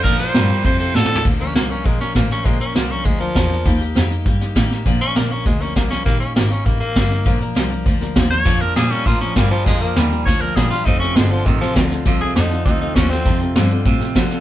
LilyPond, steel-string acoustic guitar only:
\new Staff \with { instrumentName = "Steel-string acoustic guitar" } { \time 4/4 \key bes \major \tempo 4 = 200 <bes, d f bes d' bes'>8 <f bes d' bes'>8 <bes, d f bes d' bes'>8 <f bes d' bes'>8 <f c' f' a'>8 <c' f' a'>8 <f c' f' a'>8 <c' f' a'>8 | <bes, d f bes d' bes'>8 <f bes d' bes'>8 <bes, d f bes d' bes'>8 <f bes d' bes'>8 <f bes d' bes'>8 <f bes d' bes'>8 <bes, d f bes d' bes'>8 <f bes d' bes'>8 | <bes, d f bes d' bes'>8 <f bes d' bes'>8 <bes, d f bes d' bes'>8 <f bes d' bes'>8 <f bes d' bes'>8 <f bes d' bes'>8 <bes, d f bes d' bes'>8 <f bes d' bes'>8 | <ees g bes ees' g'>8 <bes ees' g'>8 <ees g bes ees' g'>8 <bes ees' g'>8 <g bes ees' g'>8 <bes ees' g'>8 <ees g bes ees' g'>8 <bes ees' g'>8 |
<bes, d f bes d' bes'>8 <f bes d' bes'>8 <bes, d f bes d' bes'>8 <f bes d' bes'>8 <f bes d' bes'>8 <f bes d' bes'>8 <bes, d f bes d' bes'>8 <f bes d' bes'>8 | <ees g bes ees' g'>8 <bes ees' g'>8 <ees g bes ees' g'>8 <bes ees' g'>8 <g bes ees' g'>8 <bes ees' g'>8 <ees g bes ees' g'>8 <bes ees' g'>8 | <bes, d f bes d' bes'>8 <f bes d' bes'>8 <bes, d f bes d' bes'>8 <f bes d' bes'>8 <f bes d' bes'>8 <f bes d' bes'>8 <bes, d f bes d' bes'>8 <f bes d' bes'>8 | <bes, d f bes d' bes'>8 <f bes d' bes'>8 <bes, d f bes d' bes'>8 <f bes d' bes'>8 <f bes d' bes'>8 <f bes d' bes'>8 <bes, d f bes d' bes'>8 <f bes d' bes'>8 |
<bes, d f bes d' bes'>8 <f bes d' bes'>8 <bes, d f bes d' bes'>8 <f bes d' bes'>8 <f bes d' bes'>8 <f bes d' bes'>8 <bes, d f bes d' bes'>8 <f bes d' bes'>8 | <f c' f' a'>8 <c' f' a'>8 <f c' f' a'>8 <c' f' a'>8 <f c' f' a'>8 <c' f' a'>8 <f c' f' a'>8 <c' f' a'>8 | <f c' f' a'>8 <c' f' a'>8 <f c' f' a'>8 <c' f' a'>8 <f c' f' a'>8 <c' f' a'>8 <f c' f' a'>8 <c' f' a'>8 | <f c' f' a'>8 <c' f' a'>8 <f c' f' a'>8 <c' f' a'>8 <f c' f' a'>8 <c' f' a'>8 <f c' f' a'>8 <c' f' a'>8 | }